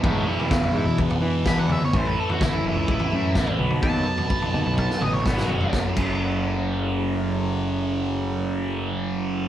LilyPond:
<<
  \new Staff \with { instrumentName = "Lead electric guitar" } { \time 4/4 \key fis \dorian \tempo 4 = 126 <e' cis''>8 <dis' b'>8 <dis' fis'>8 e'8 r4 b''16 fis''16 e''16 cis''16 | bis'16 b'16 a'16 fis'16 e'8 e'2 r8 | a''2 a''8 dis''16 cis''16 fis'4 | r1 |
r1 | }
  \new Staff \with { instrumentName = "Harmonium" } { \time 4/4 \key fis \dorian << { b'1~ | b'1~ | b'1 | <a e' fis' cis''>1~ |
<a e' fis' cis''>1 | } \\ { <dis' e'>1 | cis'2.~ cis'8 <dis' fis'>8~ | <dis' fis'>1 | r1 |
r1 | } >> }
  \new Staff \with { instrumentName = "Harmonium" } { \clef bass \time 4/4 \key fis \dorian gis1 | a1~ | a1 | r1 |
r1 | }
  \new Staff \with { instrumentName = "Distorted electric guitar" } { \clef bass \time 4/4 \key fis \dorian <e, b, e>8 <b, e>8 <e, b, e>4. <b, e>8 <e, b, e>8 <b, e>8 | <a, e a>8 <e a>8 <a, e a>4. <e a>8 <a, e a>8 <b, fis b>8 | <b, fis b>8 <fis b>8 <b, fis b>4. <fis b>8 <b, fis b>8 <fis b>8 | <fis, cis fis>8 <fis, cis fis>2.~ <fis, cis fis>8~ |
<fis, cis fis>1 | }
  \new Staff \with { instrumentName = "Picked electric bass" } { \clef bass \time 4/4 \key fis \dorian gis,8 r4 gis,16 e,8 r16 e8 r16 e,8 r16 | a,,8 r4 fis,,16 cis,8 r16 fis,8 r8 b,,16 r16 | dis,8 r4 dis,16 b,,8 r16 a,,8 gis,,8 fis,,8 | fis,,16 r16 fis,,2.~ fis,,8~ |
fis,,1 | }
  \new DrumStaff \with { instrumentName = "Drums" } \drummode { \time 4/4 <bd tomfh>8. tomfh16 <bd sn toml>16 tomfh8. bd16 tomfh8. <bd sn>16 tomfh16 toml16 toml16 | <bd tomfh>8. tomfh16 <bd sn toml>16 tomfh8. bd16 tomfh8. <bd sn>16 tomfh16 toml16 toml16 | <bd tomfh>8. tomfh16 bd16 tomfh16 toml8 bd16 sn16 toml16 toml16 <bd sn>16 sn16 tomfh16 tomfh16 | <bd sn>8 <cymc bd>8 r4 r4 r4 |
r4 r4 r4 r4 | }
>>